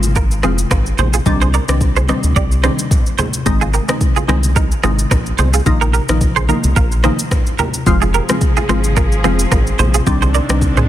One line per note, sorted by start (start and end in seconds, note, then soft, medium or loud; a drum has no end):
0.00 0.45 G#1 loud
0.00 shaker medium
0.04 high conga medium
0.16 0.25 F4 medium
0.16 0.24 A#4 medium
0.16 kick loud
0.16 shaker medium
0.31 shaker medium
0.43 0.65 F1 medium
0.43 0.59 F3 medium
0.43 0.59 G#3 medium
0.43 0.59 C4 medium
0.43 0.59 F4 medium
0.43 0.53 F4 medium
0.43 0.52 G#4 medium
0.43 cross-stick medium
0.43 high conga medium
0.43 shaker medium
0.58 shaker loud
0.71 0.92 G#1 medium
0.71 0.80 F4 medium
0.71 0.79 A#4 medium
0.71 kick loud
0.71 cross-stick loud
0.71 low conga medium
0.71 shaker medium
0.86 shaker soft
0.98 1.20 A#1 medium
0.98 1.07 G#4 medium
0.98 1.07 C5 medium
0.98 high conga medium
0.98 low conga medium
0.98 shaker medium
1.14 1.21 F4 medium
1.14 1.20 G#4 medium
1.14 shaker medium
1.26 1.59 C2 loud
1.26 1.41 D#3 medium
1.26 1.41 G3 medium
1.26 1.42 C4 medium
1.26 1.42 D4 loud
1.26 kick loud
1.26 low conga medium
1.26 shaker medium
1.41 1.49 G#4 medium
1.41 1.48 C5 medium
1.41 high conga medium
1.41 shaker soft
1.54 1.63 A#4 medium
1.54 1.62 D5 medium
1.54 shaker medium
1.68 2.12 C2 medium
1.68 1.81 D#3 medium
1.68 1.81 G3 medium
1.68 1.82 C4 medium
1.68 1.82 D4 medium
1.68 cross-stick loud
1.68 high conga medium
1.68 shaker medium
1.81 kick loud
1.81 shaker medium
1.96 2.04 G#4 medium
1.96 2.03 C5 medium
1.96 high conga medium
1.96 shaker soft
2.08 2.24 D#3 medium
2.08 2.24 G3 medium
2.08 2.24 C4 medium
2.08 2.24 D4 medium
2.08 2.18 C5 medium
2.08 2.17 D#5 medium
2.08 cross-stick loud
2.08 high conga medium
2.08 shaker medium
2.23 2.33 D2 medium
2.23 high conga medium
2.23 shaker medium
2.36 2.70 C2 loud
2.36 2.45 G4 medium
2.36 2.44 D5 medium
2.36 kick loud
2.36 shaker medium
2.52 shaker medium
2.64 2.79 D#3 medium
2.64 2.79 G3 medium
2.64 2.79 C4 medium
2.64 2.79 D4 medium
2.64 2.72 G#4 medium
2.64 2.72 C5 medium
2.64 cross-stick loud
2.64 high conga medium
2.64 shaker medium
2.79 shaker loud
2.91 kick loud
2.91 low conga medium
2.91 shaker medium
3.06 shaker soft
3.18 3.27 G#4 medium
3.18 3.27 C5 medium
3.18 high conga medium
3.18 low conga medium
3.18 shaker medium
3.34 shaker medium
3.46 3.80 G#1 loud
3.46 3.61 D#3 medium
3.46 3.62 G#3 medium
3.46 3.62 C4 medium
3.46 3.62 D#4 loud
3.46 kick loud
3.46 low conga medium
3.46 shaker medium
3.61 3.69 F4 medium
3.61 3.68 G#4 medium
3.61 high conga medium
3.61 shaker soft
3.74 3.82 G4 medium
3.74 3.82 A#4 medium
3.74 shaker medium
3.88 4.01 D#3 medium
3.88 4.01 G#3 medium
3.88 4.01 C4 medium
3.88 4.02 D#4 medium
3.88 cross-stick loud
3.88 high conga medium
3.88 shaker medium
4.01 kick loud
4.01 shaker medium
4.16 4.24 F4 medium
4.16 4.23 G#4 medium
4.16 high conga medium
4.16 shaker soft
4.28 4.72 C2 medium
4.28 4.44 D#3 medium
4.28 4.44 G#3 medium
4.28 4.44 C4 medium
4.28 4.44 D#4 medium
4.28 4.38 G#4 medium
4.28 4.37 C5 medium
4.28 cross-stick loud
4.28 high conga medium
4.28 shaker medium
4.43 high conga medium
4.43 shaker medium
4.56 4.65 D#4 medium
4.56 4.64 A#4 medium
4.56 kick loud
4.56 shaker medium
4.72 shaker medium
4.83 5.05 G#1 medium
4.83 4.99 D#3 medium
4.83 4.99 G#3 medium
4.83 4.99 C4 medium
4.83 4.99 D#4 medium
4.83 4.92 F4 medium
4.83 4.92 G#4 medium
4.83 cross-stick medium
4.83 high conga medium
4.83 shaker medium
4.99 shaker loud
5.11 5.33 A#1 loud
5.11 5.20 D#4 medium
5.11 5.19 A#4 medium
5.11 kick loud
5.11 cross-stick loud
5.11 low conga medium
5.11 shaker medium
5.26 shaker soft
5.38 5.60 C2 medium
5.38 5.48 G#4 medium
5.38 5.47 C5 medium
5.38 high conga medium
5.38 low conga medium
5.38 shaker medium
5.54 5.61 F4 medium
5.54 5.61 G#4 medium
5.54 shaker medium
5.66 6.00 A#1 loud
5.66 5.82 D#3 medium
5.66 5.82 F3 medium
5.66 5.82 A#3 medium
5.66 5.82 D#4 loud
5.66 kick loud
5.66 low conga medium
5.66 shaker medium
5.81 5.89 G4 medium
5.81 5.88 A#4 medium
5.81 high conga medium
5.81 shaker soft
5.93 6.02 G4 medium
5.93 6.02 A#4 medium
5.93 shaker medium
6.09 6.52 A#1 medium
6.09 6.22 D#3 medium
6.09 6.22 F3 medium
6.09 6.22 A#3 medium
6.09 6.22 D#4 medium
6.09 cross-stick loud
6.09 high conga medium
6.09 shaker medium
6.21 kick loud
6.21 shaker medium
6.36 6.44 G#4 medium
6.36 6.43 C5 medium
6.36 high conga medium
6.36 shaker soft
6.49 6.64 D#3 medium
6.49 6.64 F3 medium
6.49 6.64 A#3 medium
6.49 6.64 D#4 medium
6.49 6.58 G4 medium
6.49 6.57 A#4 medium
6.49 high conga medium
6.49 shaker medium
6.64 6.74 C2 medium
6.64 high conga medium
6.64 shaker medium
6.76 7.10 A#1 loud
6.76 6.85 F4 medium
6.76 6.85 A#4 medium
6.76 kick loud
6.76 shaker medium
6.92 shaker medium
7.04 7.19 D#3 medium
7.04 7.19 F3 medium
7.04 7.20 A#3 medium
7.04 7.20 D#4 medium
7.04 7.13 G#4 medium
7.04 7.12 C5 medium
7.04 cross-stick medium
7.04 high conga medium
7.04 shaker soft
7.19 shaker loud
7.31 kick loud
7.31 cross-stick loud
7.31 low conga medium
7.31 shaker medium
7.46 shaker soft
7.59 7.68 G4 medium
7.59 7.67 A#4 medium
7.59 high conga medium
7.59 low conga medium
7.59 shaker medium
7.74 shaker medium
7.87 8.20 F1 loud
7.87 8.02 F3 medium
7.87 10.05 F3 medium
7.87 8.02 G#3 medium
7.87 8.02 C4 medium
7.87 10.89 C4 medium
7.87 8.02 F4 loud
7.87 10.05 G#4 medium
7.87 kick loud
7.87 low conga medium
7.87 shaker medium
8.02 8.09 F4 medium
8.02 8.08 G#4 medium
8.02 high conga medium
8.02 shaker soft
8.14 8.23 G4 medium
8.14 8.22 A#4 medium
8.14 shaker medium
8.29 8.42 F3 medium
8.29 8.42 G#3 medium
8.29 8.42 C4 medium
8.29 8.42 F4 medium
8.29 cross-stick loud
8.29 high conga medium
8.29 shaker medium
8.41 kick loud
8.41 shaker medium
8.57 8.64 F4 medium
8.57 8.64 G#4 medium
8.57 high conga medium
8.57 shaker soft
8.69 9.26 G#1 medium
8.69 8.84 F3 medium
8.69 8.85 G#3 medium
8.69 8.85 C4 medium
8.69 8.85 F4 medium
8.69 8.78 G#4 medium
8.69 8.77 C5 medium
8.69 cross-stick medium
8.69 high conga medium
8.69 shaker medium
8.84 high conga medium
8.84 shaker medium
8.97 9.05 F4 medium
8.97 9.05 A#4 medium
8.97 kick loud
8.97 shaker medium
9.12 shaker medium
9.24 9.46 F1 medium
9.24 9.40 F3 medium
9.24 9.40 G#3 medium
9.24 9.40 C4 medium
9.24 9.40 F4 medium
9.24 9.33 F4 medium
9.24 9.32 G#4 medium
9.24 cross-stick medium
9.24 high conga medium
9.24 shaker medium
9.39 shaker loud
9.52 9.73 G#1 medium
9.52 9.60 F4 medium
9.52 9.60 A#4 medium
9.52 kick loud
9.52 cross-stick medium
9.52 low conga medium
9.52 shaker medium
9.67 shaker soft
9.79 10.01 A#1 medium
9.79 9.88 G#4 medium
9.79 9.87 C5 medium
9.79 high conga medium
9.79 low conga medium
9.79 shaker medium
9.94 10.02 F4 medium
9.94 10.01 G#4 medium
9.94 shaker medium
10.07 10.40 C2 loud
10.07 10.22 D#3 medium
10.07 10.89 D#3 medium
10.07 10.22 G3 medium
10.07 10.22 C4 medium
10.07 10.89 D4 medium
10.07 10.22 D4 loud
10.07 kick loud
10.07 low conga medium
10.07 shaker medium
10.22 10.29 G#4 medium
10.22 10.29 C5 medium
10.22 high conga medium
10.22 shaker soft
10.34 10.43 A#4 medium
10.34 10.43 D5 medium
10.34 shaker medium
10.49 10.89 C2 medium
10.49 10.62 D#3 medium
10.49 10.62 G3 medium
10.49 10.62 C4 medium
10.49 10.62 D4 medium
10.49 cross-stick loud
10.49 high conga medium
10.49 shaker medium
10.62 kick loud
10.62 shaker medium
10.77 10.84 G#4 medium
10.77 10.84 C5 medium
10.77 mid tom medium
10.77 high conga medium
10.77 shaker soft